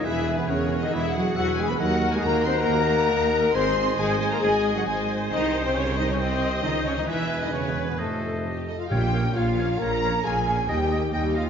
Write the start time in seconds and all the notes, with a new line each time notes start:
0.02 E1 E2 E3 E4 G#4 B4 E5 G#5
0.36 B2 B3 B4
0.46 E1 E2 C#3 C#4 G#4 A#4 C#5 F#5
0.78 D#3 D#5
0.83 D#4 D#5
0.90 E1 E2 E3 G#4 E5
0.94 E4
1.11 F#3 F#5
1.17 F#4
1.34 E1 E2 F#3 F#4 B4 E5 F#5
1.56 G#3 G#5
1.60 G#4
1.68 B3 B4 B5
1.79 D#2 F#3 A#4 D#5 F#5
1.83 F#4
2.12 G#3 G#5
2.16 G#4
2.22 D#2 A#3 F#4 A#4 A#5
2.44 C4 C5 C6
2.54 A#3 A#5
2.60 A#4
2.67 D#2 F#4
3.10 D#2 A#4
3.53 G#1 C4 G#4 C5 G#5 C6
3.97 G#1 G#3 G#4 C5 G#5
4.19 G#3 G#4 G#5
4.30 A#3 A#4 A#5
4.40 G#1 G#3 G#4 D#5 G#5
4.75 F#3 F#4 F#5
4.85 G#1 G#3 G#4 C5 G#5
5.30 C2 D#3 D#4 C5 D#5 G5
5.63 C3 C4 C5
5.74 C#3 C#4 C#5
5.97 D#3 D#4 D#5
6.08 C#3 C#4 C#5
6.17 C3 C4 C5 D#5 G5
6.62 C#2 D#3 D#4 C5 D#5 G5
6.86 C#3 C#4 C#5
6.96 D#3 D#4 D#5
7.07 E1 E2 E3 E4 B4 E5 G#5
7.42 D#3 D#4 D#5
7.52 C#3 C#4 B4 C#5
7.86 B2 B3 B4
7.98 F1 F2 A2 A3 A4 C5 D#5
8.46 G4
8.66 D#4 A4 D#5
8.78 F4 F5
8.90 A#1 A#2 A#3 F4 G4 C#5 F5 G5
9.14 C#4 A#4 C#5 F5
9.33 A#1 A#2 F4 F5
9.37 A#3 F4 C#5
9.58 C#4 A#4 C#5 F5
9.79 A#1 A#2 A#3 F4 A#4 C#5 F5 A#5
10.03 C#4 A#4 C#5 F5
10.23 A#1 A#2 A#3 F4 G#4 C#5 F5 G#5
10.47 C#4 A#4 C#5 F5
10.68 D#2 G3 D#4 G4 D#5 G5
10.91 A#3 G4 D#5
11.12 D#2 G3 D#4 G4 D#5 G5
11.34 A#3 F4 G4 D#5 F5